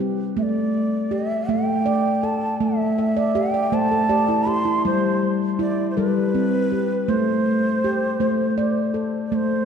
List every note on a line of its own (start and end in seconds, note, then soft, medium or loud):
0.00 0.33 G3 medium
0.00 0.37 C4 medium
0.00 0.74 G4 medium
0.37 1.12 A3 medium
0.37 0.44 E5 medium
0.43 1.14 D5 medium
1.11 1.86 G4 medium
1.11 1.51 E5 medium
1.49 2.57 A3 medium
1.49 2.25 G5 medium
1.86 2.61 D5 medium
2.23 3.36 A4 medium
2.23 2.61 A5 medium
2.60 3.36 A3 medium
2.60 3.38 E5 medium
2.98 3.33 E5 medium
3.17 3.52 D5 medium
3.35 4.08 G4 medium
3.35 3.70 E5 medium
3.35 3.75 G5 medium
3.54 3.89 D5 medium
3.72 4.81 A3 medium
3.72 4.08 C5 medium
3.72 4.50 A5 medium
3.92 4.26 A4 medium
4.09 4.45 G4 medium
4.09 4.85 D5 medium
4.29 4.64 E4 medium
4.47 4.82 G4 medium
4.47 4.86 C6 medium
4.65 5.00 E4 medium
4.85 5.93 G3 medium
4.85 5.30 C5 medium
5.59 6.34 E4 medium
5.59 5.88 D5 medium
5.91 5.99 C5 medium
5.97 7.05 G3 medium
5.97 7.09 A4 medium
5.97 7.10 B4 medium
6.35 7.09 C4 medium
6.72 7.46 G4 medium
7.08 8.16 A3 medium
7.08 8.95 C5 medium
7.84 8.58 G4 medium
8.20 9.28 A3 medium
8.20 9.33 C5 medium
8.58 9.32 D5 medium
8.94 9.65 A4 medium
9.27 9.36 D5 medium
9.32 9.65 A3 medium
9.32 9.65 C5 medium